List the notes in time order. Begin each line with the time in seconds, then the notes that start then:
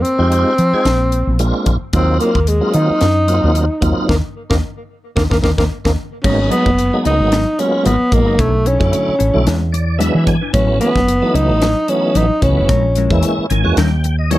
0.02 C4, closed hi-hat
0.18 F2 G#3 C4 D#4 F4 G4
0.32 closed hi-hat
0.58 F3, closed hi-hat
0.73 G#3 C4 D#4 F4 G#4, muted fretless electric bass stroke
0.85 A#1, snare, closed hi-hat
1.12 closed hi-hat
1.27 A#1
1.39 G#3 A#3 C4 D4 F4, closed hi-hat
1.66 A#1, kick, closed hi-hat
1.81 muted fretless electric bass stroke
1.93 D#2 F#3 A#3 C4 D#4 F4, kick, closed hi-hat
2.20 A#3, closed hi-hat
2.35 D#2, kick
2.47 G#3, closed hi-hat
2.61 F#3 A#3 C4 D#4 F4
2.73 D#3 D#4, closed hi-hat
2.90 muted fretless electric bass stroke
3.01 F#2, snare, closed hi-hat
3.27 F#3 A#3 C4 D#4 F4, closed hi-hat
3.43 D#2
3.55 closed hi-hat
3.81 D#2 F#3 A#3 C4 D#4 F4, kick, closed hi-hat
3.98 muted fretless electric bass stroke
4.08 D#2 A#3 C4 D#4, kick, snare
4.50 D#2 A#3 C4 D#4, kick, snare
5.16 D#2 A#3 C4 D#4, kick, snare
5.30 D#2 A#3 C4 D#4, kick, snare
5.42 D#2 A#3 C4 D#4, kick, snare
5.57 D#2 A#3 C4 D#4, kick, snare
5.84 D#2 A#3 C4 D#4, kick, snare
6.24 G#1 F#3 G#3 A#3 B3 C#4 D#4 A#4, kick, crash
6.39 muted clean electric guitar stroke
6.50 F#3 B3 D#4 A#4, closed hi-hat
6.66 F#1, kick
6.78 muted clean electric guitar stroke, closed hi-hat
6.93 F#3 G#3 A#3 B3 D#4
7.05 C#2 F#3 B3 D#4 A#4, closed hi-hat
7.20 G#1, muted clean electric guitar stroke
7.32 F#3 B3 D#4 A#4, snare, closed hi-hat
7.46 muted clean electric guitar stroke
7.58 F#3 G#3 A#3 B3 C#4 F4, muted clean electric guitar stroke, closed hi-hat
7.85 G#1 F#3 B3 D#4 A#4, closed hi-hat
8.00 muted clean electric guitar stroke
8.12 B1 F#3 G#3 A#3 B3 D#4, muted clean electric guitar stroke, kick, closed hi-hat
8.27 F#1 B3 D#4 A#4
8.39 B1 A3 D4 E4 A4 C#5, kick, closed hi-hat
8.54 muted clean electric guitar stroke
8.65 C#4 D4 E4 A4 C#5, closed hi-hat
8.79 F#2 D3 F#3 A3 C#4 E4, kick
8.92 muted clean electric guitar stroke, closed hi-hat
9.08 muted fretless electric bass stroke
9.19 A1 D4 E4 A4 C#5, closed hi-hat
9.33 B1 D3 F#3 A3 C#4 E4, muted clean electric guitar stroke
9.47 E2 G#3 D4 E4 B4, snare, closed hi-hat
9.61 muted clean electric guitar stroke
9.72 D5, muted clean electric guitar stroke, closed hi-hat
9.98 E3 F#3 G#3 B3 D4 E4 B4 E5, closed hi-hat
10.14 E3, muted clean electric guitar stroke
10.27 G#5, muted clean electric guitar stroke, kick, closed hi-hat
10.41 D4 E4 B4
10.53 A1 E3 F#3 A3 B3 C#4 E4 B4, kick, closed hi-hat
10.80 F#3 B3 C#4 E4 B4, closed hi-hat
10.95 F#1, muted clean electric guitar stroke, kick, snare
11.07 muted clean electric guitar stroke, closed hi-hat
11.22 E3 F#3 A3 B3 D#4
11.34 C#2 F#3 C#4 D#4 E4 B4, closed hi-hat
11.49 A1, muted clean electric guitar stroke
11.61 F#3 C#4 E4 B4, snare, closed hi-hat
11.76 muted clean electric guitar stroke
11.88 E3 F#3 A3 B3 C#4 D#4, muted clean electric guitar stroke, closed hi-hat
12.15 A1 F#3 C#4 D#4 E4 B4, closed hi-hat
12.30 muted clean electric guitar stroke, muted fretless electric bass stroke
12.41 C#2 E3 F#3 A3 B3 C#4, muted clean electric guitar stroke, kick, closed hi-hat
12.57 F#1 C#4 E4 B4
12.69 A#1 G#3 C#4 E4 A#4, kick, closed hi-hat
12.85 muted clean electric guitar stroke
12.95 G#3 C#4 E4 A#4, closed hi-hat
13.10 E2 E3 G#3 A#3 C#4 E4, muted clean electric guitar stroke, kick
13.23 muted clean electric guitar stroke, closed hi-hat
13.38 muted fretless electric bass stroke
13.50 G#1 G#3 C#4 E4 A#4 G#5, closed hi-hat
13.64 E2 E3 G#3 A#3 C#4 F#4, muted clean electric guitar stroke
13.77 D#2 G3 C#4 E4 A#4 G5, snare, closed hi-hat
14.04 muted clean electric guitar stroke, closed hi-hat
14.19 D#5
14.31 E3 G3 A#3 C#4 D#4 E4 A#4 C#5, closed hi-hat